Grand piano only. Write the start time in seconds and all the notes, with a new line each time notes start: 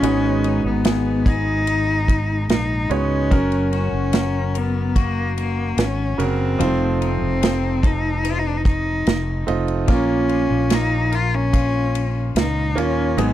0.02 G#2 G#3 B3 D#4 F#4 B4
2.89 G#3 B3 D#4 F#4 C#5
3.31 C#4 F#4 A#4
6.18 C#3 F#4 A#4
6.59 G3 C4 D#4 F4 C5
6.66 A3
9.47 A3 C4 D#4 F4 D#5
9.88 A#2 A#3 C#4 F4
12.75 A#3 C#4 F4
13.17 G#2 B2 F#3 G#3 D#4 G#4